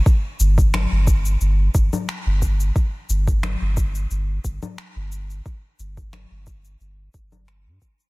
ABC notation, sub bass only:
X:1
M:4/4
L:1/16
Q:"Swing 16ths" 1/4=89
K:Cmix
V:1 name="Sub bass" clef=bass
z2 G,,,3 G,,,3 G,,,2 G,,, z2 G,,,3 | z2 G,,,3 G,,,3 G,,,2 G,,, z2 G,,,3 | z2 G,,,3 G,,,3 G,,,2 G,,,3 G,, z2 |]